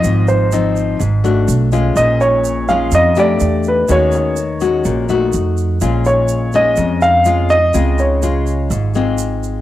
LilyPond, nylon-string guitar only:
\new Staff \with { instrumentName = "Nylon-string guitar" } { \time 4/4 \key bes \minor \tempo 4 = 125 << { <f c' ees'>4 <f c' ees'>4 r8 <a d' ges'>4 <aes des' f'>8~ | <aes des' f'>4. <aes des' f'>4 <a d' g'>4. | <aes des' ges'>4 r8 <aes des' ges'>4 <a ees' ges'>4. | <aes des' f'>4. <aes des' f'>4. <aes des' f'>8 r8 |
<aes c' f'>4 <aes f'>4. <aes c' f'>4. | } \\ { aes,2 aes,4 r4 | bes,2 f,4 r4 | ees2 bes,4 r4 | bes,2 f,2 |
des2 aes,2 | } >> }